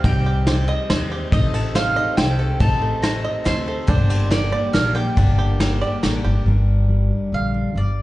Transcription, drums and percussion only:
0.04 kick, ride
0.47 snare, ride
0.90 snare, ride
1.32 kick, ride
1.54 ride
1.75 snare, ride
2.18 snare, ride
2.60 kick, ride
3.03 snare, ride
3.46 snare, ride
3.88 kick, ride
4.10 ride
4.31 snare, ride
4.74 snare, ride
5.17 kick, ride
5.60 snare, ride
6.03 snare, ride

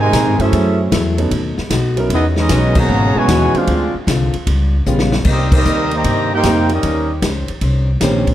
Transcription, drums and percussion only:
0.13 kick, snare, hi-hat pedal, ride
0.40 ride
0.52 kick, ride
0.92 kick, snare, hi-hat pedal, ride
1.18 ride
1.31 kick, ride
1.57 snare
1.70 kick, snare, hi-hat pedal, ride
1.97 ride
2.10 kick, ride
2.36 snare
2.49 kick, snare, hi-hat pedal, ride
2.75 kick, crash
3.28 kick, snare, hi-hat pedal, ride
3.55 ride
3.67 kick, ride
4.07 kick, snare, hi-hat pedal, ride
4.34 ride
4.47 kick, ride
4.86 hi-hat pedal
4.99 snare
5.12 snare
5.25 kick, crash
5.52 kick, crash
5.65 hi-hat pedal
5.91 ride
6.04 kick, ride
6.43 kick, snare, hi-hat pedal, ride
6.69 ride
6.83 kick, ride
7.22 kick, snare, hi-hat pedal, ride
7.48 ride
7.61 kick, ride
8.01 kick, snare, hi-hat pedal, ride
8.27 kick, ride

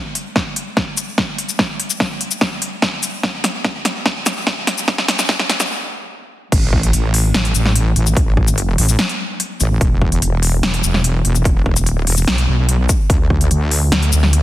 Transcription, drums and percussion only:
0.15 closed hi-hat
0.36 kick, snare
0.56 closed hi-hat
0.77 kick, snare
0.97 closed hi-hat, shaker
1.18 kick, snare
1.38 closed hi-hat
1.49 shaker
1.59 kick, snare
1.80 closed hi-hat
1.90 shaker
2.00 kick, snare
2.21 closed hi-hat
2.31 shaker
2.41 kick, snare
2.62 closed hi-hat
2.82 kick, snare
3.03 closed hi-hat, shaker
3.23 kick, snare
3.44 snare, closed hi-hat
3.64 kick, snare
3.85 snare, closed hi-hat
4.06 kick, snare
4.26 snare, closed hi-hat, shaker
4.47 kick, snare
4.67 snare, closed hi-hat
4.78 shaker
4.88 kick, snare
4.98 snare
5.08 snare, closed hi-hat
5.19 snare, shaker
5.29 kick, snare
5.39 snare
5.49 snare, closed hi-hat
5.60 snare, closed hi-hat, shaker
6.52 kick, closed hi-hat, crash
6.73 kick
6.83 closed hi-hat
6.93 closed hi-hat
7.14 open hi-hat
7.34 snare, closed hi-hat
7.45 closed hi-hat
7.55 shaker
7.66 snare
7.75 closed hi-hat
7.96 closed hi-hat
8.07 shaker
8.17 kick, closed hi-hat
8.37 kick
8.48 closed hi-hat, shaker
8.58 closed hi-hat
8.78 open hi-hat
8.89 shaker
8.99 snare, closed hi-hat
9.09 closed hi-hat
9.40 closed hi-hat
9.60 closed hi-hat, shaker
9.81 kick, closed hi-hat
10.02 kick
10.12 closed hi-hat
10.22 closed hi-hat
10.43 open hi-hat
10.63 snare, closed hi-hat
10.74 closed hi-hat
10.84 shaker
10.94 snare
11.04 closed hi-hat
11.25 closed hi-hat
11.35 shaker
11.45 kick, closed hi-hat
11.66 kick
11.76 closed hi-hat, shaker
11.86 closed hi-hat
12.07 open hi-hat
12.18 shaker
12.28 snare, closed hi-hat
12.38 closed hi-hat
12.69 closed hi-hat
12.89 kick, closed hi-hat, shaker
13.10 kick, closed hi-hat
13.30 kick
13.41 closed hi-hat
13.51 closed hi-hat
13.71 open hi-hat
13.92 snare, closed hi-hat
14.02 closed hi-hat
14.12 shaker
14.23 snare
14.33 closed hi-hat

